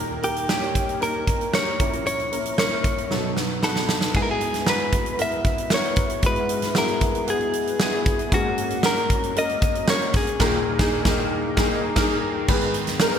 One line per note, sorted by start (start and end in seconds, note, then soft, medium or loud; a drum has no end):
0.00 1.75 D#2 medium
0.00 1.75 A#2 medium
0.00 0.13 A#3 medium
0.00 0.13 D#4 medium
0.00 0.14 G4 medium
0.00 0.14 A#4 medium
0.22 0.44 A#3 medium
0.22 0.44 D#4 medium
0.22 0.44 G4 medium
0.22 0.49 G4 medium
0.22 0.44 A#4 medium
0.22 closed hi-hat medium
0.36 closed hi-hat soft
0.49 0.92 A#3 medium
0.49 0.92 D#4 medium
0.49 0.92 G4 medium
0.49 1.02 G4 medium
0.49 0.93 C#5 medium
0.49 snare medium
0.63 closed hi-hat soft
0.75 kick medium
0.75 closed hi-hat medium
0.89 closed hi-hat soft
1.00 1.44 A#3 medium
1.00 1.44 D#4 medium
1.00 1.44 G4 medium
1.00 1.44 A#4 medium
1.00 1.54 A#4 medium
1.00 closed hi-hat medium
1.27 kick medium
1.27 closed hi-hat soft
1.41 closed hi-hat soft
1.52 1.78 A#3 medium
1.52 1.79 D#4 medium
1.52 1.80 G4 medium
1.52 1.78 A#4 medium
1.52 2.06 C#5 medium
1.52 snare medium
1.79 3.06 A#1 medium
1.79 3.06 A#2 medium
1.79 2.23 A#3 medium
1.79 2.23 C#4 medium
1.79 2.23 E4 medium
1.79 2.23 A#4 medium
1.79 kick loud
1.79 closed hi-hat medium
1.93 closed hi-hat soft
2.06 2.58 C#5 medium
2.06 closed hi-hat medium
2.19 closed hi-hat soft
2.32 2.53 A#3 medium
2.32 2.53 C#4 medium
2.32 2.53 E4 soft
2.32 2.54 A#4 medium
2.32 closed hi-hat medium
2.45 closed hi-hat medium
2.58 3.01 A#3 medium
2.58 3.01 C#4 medium
2.58 3.01 E4 medium
2.58 3.01 A#4 medium
2.58 3.33 C#5 medium
2.58 snare medium
2.84 kick medium
2.84 closed hi-hat medium
2.98 closed hi-hat soft
3.10 4.11 B1 soft
3.10 4.11 F#2 medium
3.10 3.53 B3 medium
3.10 3.54 D#4 medium
3.10 3.54 F#4 soft
3.10 3.54 A4 medium
3.10 snare soft
3.37 snare medium
3.62 4.05 B3 medium
3.62 4.06 D#4 medium
3.62 4.06 F#4 medium
3.62 4.16 A4 medium
3.62 4.06 B4 medium
3.62 snare medium
3.76 snare medium
3.89 snare medium
4.01 snare medium
4.14 6.19 G#2 medium
4.14 6.19 G#3 medium
4.14 4.58 B3 medium
4.14 4.58 E4 medium
4.14 4.58 F#4 medium
4.14 4.58 G#4 medium
4.14 4.22 G#4 medium
4.14 kick medium
4.14 crash medium
4.22 4.29 A#4 medium
4.31 4.69 G#4 medium
4.41 closed hi-hat medium
4.54 snare soft
4.54 closed hi-hat soft
4.66 5.10 B3 medium
4.66 5.10 E4 medium
4.66 5.10 F#4 medium
4.66 5.21 B4 medium
4.66 5.10 A#5 medium
4.66 snare medium
4.92 kick medium
4.92 closed hi-hat medium
5.06 closed hi-hat soft
5.18 5.62 B3 medium
5.18 5.62 E4 medium
5.18 5.62 F#4 medium
5.18 5.62 A#4 medium
5.18 5.74 E5 medium
5.18 closed hi-hat medium
5.31 closed hi-hat soft
5.45 kick medium
5.45 closed hi-hat medium
5.58 closed hi-hat soft
5.70 6.14 B3 medium
5.70 6.14 E4 medium
5.70 6.14 F#4 medium
5.70 6.14 A#4 medium
5.70 snare medium
5.74 6.26 C#5 medium
5.84 closed hi-hat soft
5.96 kick medium
5.96 closed hi-hat medium
6.10 closed hi-hat soft
6.22 8.28 G#2 medium
6.22 8.28 G#3 medium
6.22 6.67 B3 medium
6.22 6.66 E4 medium
6.22 6.67 F#4 medium
6.22 6.67 G#4 medium
6.22 6.78 B4 medium
6.22 kick medium
6.22 closed hi-hat medium
6.36 closed hi-hat soft
6.49 closed hi-hat medium
6.62 snare soft
6.62 closed hi-hat medium
6.75 7.18 B3 medium
6.75 7.19 E4 medium
6.75 7.19 F#4 medium
6.75 7.19 G#4 medium
6.75 7.30 A#4 medium
6.75 snare medium
6.88 closed hi-hat soft
7.01 kick medium
7.01 closed hi-hat medium
7.15 closed hi-hat soft
7.27 7.70 B3 medium
7.27 7.71 E4 medium
7.27 7.70 F#4 medium
7.27 7.71 G#4 medium
7.27 7.81 G#4 medium
7.27 closed hi-hat medium
7.41 closed hi-hat soft
7.53 closed hi-hat medium
7.67 closed hi-hat soft
7.80 8.23 B3 medium
7.80 8.23 E4 medium
7.80 8.23 F#4 medium
7.80 8.23 G#4 medium
7.80 8.34 G#4 medium
7.80 snare loud
8.06 kick loud
8.06 closed hi-hat medium
8.19 closed hi-hat soft
8.32 10.37 G#2 medium
8.32 8.75 A#3 medium
8.32 8.75 C#4 medium
8.32 8.75 F#4 medium
8.32 8.87 F#4 medium
8.32 8.75 G#4 medium
8.32 kick medium
8.32 closed hi-hat medium
8.58 closed hi-hat medium
8.70 closed hi-hat medium
8.83 9.27 A#3 medium
8.83 9.27 C#4 medium
8.83 9.27 F#4 medium
8.83 9.27 A#4 medium
8.83 9.38 A#4 medium
8.83 snare medium
8.97 closed hi-hat soft
9.10 kick medium
9.10 closed hi-hat medium
9.23 closed hi-hat soft
9.36 9.79 A#3 medium
9.36 9.79 C#4 medium
9.36 9.79 F#4 medium
9.36 9.80 A#4 medium
9.36 9.90 D#5 medium
9.36 closed hi-hat medium
9.49 closed hi-hat soft
9.62 kick medium
9.62 closed hi-hat medium
9.75 closed hi-hat soft
9.88 10.31 A#3 medium
9.88 10.31 C#4 medium
9.88 10.31 F#4 medium
9.88 10.31 A#4 medium
9.88 10.13 C#5 medium
9.88 snare loud
10.02 closed hi-hat soft
10.13 11.16 G#4 medium
10.13 kick medium
10.13 open hi-hat medium
10.27 closed hi-hat soft
10.40 10.58 D#2 medium
10.40 10.58 A#2 medium
10.40 10.58 A#3 medium
10.40 10.58 D#4 medium
10.40 10.58 G#4 medium
10.40 10.58 A#4 medium
10.40 kick medium
10.40 snare medium
10.40 crash medium
10.79 10.97 A#3 medium
10.79 10.97 D#4 medium
10.79 10.97 G#4 loud
10.79 kick loud
10.79 snare medium
11.05 11.23 A#3 medium
11.05 11.23 D#4 medium
11.05 11.23 G#4 medium
11.05 kick medium
11.05 snare loud
11.57 11.75 A#3 loud
11.57 11.76 D#4 loud
11.57 11.75 G#4 medium
11.57 kick medium
11.57 snare medium
11.96 12.14 A#3 medium
11.96 12.14 D#4 loud
11.96 12.14 G#4 medium
11.96 12.14 A#4 loud
11.96 kick loud
11.96 snare medium
11.96 crash medium
12.48 13.19 G#2 medium
12.48 13.19 D#3 medium
12.48 12.92 B3 medium
12.48 12.92 D#4 medium
12.48 12.92 G#4 medium
12.48 12.92 B4 medium
12.48 kick medium
12.48 crash medium
12.61 closed hi-hat soft
12.74 closed hi-hat medium
12.87 snare soft
12.87 closed hi-hat medium
13.00 13.19 B3 medium
13.00 13.19 D#4 medium
13.00 13.19 G#4 medium
13.00 13.19 A#4 medium
13.00 snare loud
13.14 closed hi-hat soft